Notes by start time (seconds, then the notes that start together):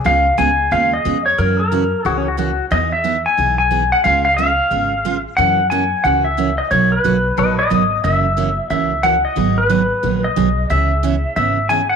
0.04 C#2 C#3 G#3 B3 F4 G#4 F5
0.38 C#2 C#3 G#3 B3 F4 G#4 G#5
0.71 D#2 C#3 G#3 B3 F4 G#4 F5
0.94 D#5
1.05 F2 C#3 G#3 B3 F4 G#4
1.26 C#5
1.38 F#2 C#3 E3 A#3 C#4 F#4 A#4
1.59 A#4
1.72 C#3 E3 A#3 C#4 F#4
2.05 C#2 C#3 E3 A#3 C#4 F#4 G#4
2.17 C#4
2.28 F#4
2.37 C#3 E3 A#3 C#4 F#4
2.71 E2 E3 B3 D#4 G#4 D#5
2.92 E5
3.04 E3 B3 D#4 G#4
3.26 G#5
3.37 B1 E3 B3 D#4 G#4
3.58 G#5
3.71 E3 B3 D#4 G#4
3.92 F#5
4.04 C#2 C#3 G#3 B3 F4 G#4 F5
4.25 F5
4.37 C#3 G#3 B3 F4 G#4 F5
4.71 G#1 C#3 G#3 B3 F4 G#4
5.05 C#3 G#3 B3 F4 G#4
5.37 F#2 C#3 E3 A#3 C#4 F#4 F#5
5.70 C#3 E3 A#3 C#4 F#4 G#5
6.04 C#2 C#3 E3 A#3 C#4 F#4 F#5
6.25 E5
6.37 C#3 E3 A#3 C#4 F#4
6.58 D#5
6.71 B1 B2 F#3 A#3 D#4 F#4 C#5
6.92 B4
7.04 B1 B2 F#3 A#3 D#4 F#4
7.37 A#1 B2 F#3 A#3 D#4 F#4 B4 D#5
7.58 B4 D#5
7.70 G#1 B2 F#3 A#3 D#4 F#4 D#5
8.04 F#1 C#3 E3 A#3 C#4 F#4 E5
8.37 C#3 E3 A#3 C#4 F#4
8.70 C#2 C#3 E3 A#3 C#4 F#4 E5
9.03 C#3 E3 A#3 C#4 F#4 F#5
9.25 D#5
9.36 G#1 D#3 F#3 B3 D#4 G#4
9.58 B4
9.69 D#3 F#3 B3 D#4 G#4
10.03 A#1 D#3 F#3 B3 D#4 G#4
10.24 D#5
10.36 B1 D#3 F#3 B3 D#4 G#4
10.70 C#2 C#3 E3 B3 C#4 G#4 E5
11.03 C#3 E3 B3 C#4 G#4
11.36 G#1 C#3 E3 B3 C#4 G#4 E5
11.69 C#3 E3 B3 C#4 G#4 G#5
11.89 F#5